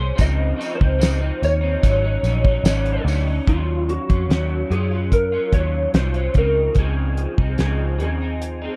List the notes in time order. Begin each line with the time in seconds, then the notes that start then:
Already playing: C2 G#4 C5
0.00 C#4
0.16 C#2 C#3 F3 C4 D#4, kick, closed hi-hat, tambourine
0.21 D#5
0.57 C#3 F3 C4
0.61 D#4, closed hi-hat, tambourine
0.75 D#4 C5
0.80 C#2 F3 C4, kick
0.99 C#3 F3 C4 D#4, closed hi-hat, tambourine
1.03 snare
1.19 F3 C4 D#4
1.42 D#2 C#5, closed hi-hat, tambourine
1.61 F3 C4 D#4
1.82 G#1 G#2 F#3 C#4 D#4, kick, closed hi-hat, tambourine
2.02 C#4 D#4
2.06 F#3
2.23 A#1 G#2 F#3 C#4 D#4, closed hi-hat, tambourine
2.44 F#3 C#4 D#4, kick
2.64 G#1 G#2 F#3 C#4 D#4, snare, closed hi-hat, tambourine
2.86 closed hi-hat
3.05 D2 G#2 F#3 C#4, open hi-hat, tambourine
3.09 D#4
3.25 F#3 C#4 D#4
3.46 D#2 D#3 F#3 C#4 F4, kick, closed hi-hat
3.89 F#4, closed hi-hat
4.09 F2 F#3 C#4 F4, kick, closed hi-hat
4.29 D#2 D#3 F#3 C#4, snare, closed hi-hat
4.71 F#2 D#3 F#3 C#4 F4 G#4, closed hi-hat
4.91 C#4 F4
4.95 F#3
5.12 A#4, kick, closed hi-hat
5.32 F#3 C#4 F4
5.53 D#2 D#3 F#3 C#4 F4 C#5, kick, closed hi-hat
5.94 C2 D#3 F#3 C#4 F4 C5, snare, closed hi-hat
6.14 F#3 C#4 F4, closed hi-hat
6.34 C#2 C#3 F3 C4 A#4, kick, closed hi-hat
6.39 D#4
6.75 C#2 C#3 F3 C4 D#4, kick, closed hi-hat
6.79 G#4
7.17 closed hi-hat
7.38 C2 F3 C4 D#4, kick
7.58 C#2 C#3 F3 C4 D#4 G#4, snare, closed hi-hat
7.99 D#2 C#3 F3 C4 D#4 G#4, closed hi-hat
8.21 F3 C4 D#4
8.42 closed hi-hat
8.62 F3 C4 D#4